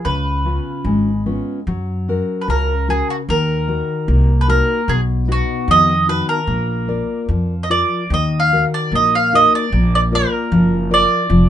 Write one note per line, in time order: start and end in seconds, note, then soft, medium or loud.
0.05 0.57 C#2 medium
0.05 0.83 C#3 medium
0.05 1.22 B4 medium
0.45 1.10 B3 soft
0.45 1.10 C#4 soft
0.45 1.10 F4 soft
0.84 1.38 G#1 medium
0.84 1.65 G#3 medium
1.26 1.59 B3 soft
1.26 1.59 C#4 soft
1.26 1.59 F4 soft
1.67 2.20 F#2 medium
1.67 2.46 F#3 medium
2.08 2.73 C#4 soft
2.08 2.73 F#4 soft
2.08 2.73 A#4 soft
2.41 2.48 B4 medium
2.48 3.00 C#2 medium
2.48 3.26 C#3 medium
2.48 2.87 A#4 medium
2.88 3.20 C#4 soft
2.88 3.21 F#4 soft
2.88 3.10 G#4 medium
2.88 3.21 A#4 medium
3.10 3.15 F#4 medium
3.29 3.81 D#2 medium
3.29 4.06 D#3 medium
3.29 4.41 A#4 medium
3.68 4.32 D#4 soft
3.68 4.32 F#4 soft
3.68 4.32 A#4 medium
4.08 4.60 C2 medium
4.08 4.86 A#3 medium
4.41 4.48 B4 medium
4.48 4.80 D#4 soft
4.48 4.80 F#4 soft
4.48 4.80 A#4 medium
4.48 4.90 A#4 medium
4.88 5.40 B1 medium
4.88 5.66 B2 medium
4.88 5.00 G#4 medium
5.28 5.91 B3 soft
5.28 5.92 D#4 soft
5.28 5.92 F#4 soft
5.32 5.71 F#4 medium
5.68 6.20 F2 medium
5.68 6.45 D#3 medium
5.68 6.06 D#5 loud
6.07 6.39 B3 soft
6.07 6.39 D#4 soft
6.07 6.39 F#4 medium
6.07 6.28 B4 medium
6.29 7.25 A#4 medium
6.47 7.00 A#1 medium
6.47 7.26 A#3 medium
6.88 7.53 F4 soft
6.88 7.53 A#4 soft
6.88 7.54 D5 medium
7.29 7.82 F2 medium
7.29 8.08 F3 medium
7.63 7.70 D#5 medium
7.70 8.02 F4 soft
7.70 8.03 A#4 soft
7.70 8.03 D5 soft
7.70 8.12 D5 medium
8.10 8.63 D#2 medium
8.10 8.90 D#3 medium
8.10 8.40 D#5 medium
8.40 8.64 F5 medium
8.52 9.17 D#4 soft
8.52 9.17 F#4 soft
8.52 9.17 A#4 soft
8.74 8.92 D5 medium
8.92 9.44 A#1 medium
8.92 9.70 A#3 medium
8.92 9.15 D#5 medium
9.15 9.35 F5 medium
9.33 9.65 D#4 soft
9.33 9.65 F#4 soft
9.33 9.65 A#4 medium
9.33 9.55 D#5 medium
9.55 9.94 D5 medium
9.72 10.23 A#1 medium
9.72 10.50 A#3 medium
9.95 10.00 D5 medium
10.12 10.74 F4 soft
10.12 10.75 A#4 soft
10.12 10.93 A#4 medium
10.12 10.75 D5 soft
10.52 11.02 F#1 medium
10.52 11.28 F3 medium
10.90 11.22 F4 medium
10.90 11.22 A#4 soft
10.90 11.22 D5 medium
10.90 11.49 D5 loud
11.30 11.49 F1 medium
11.30 11.49 F3 medium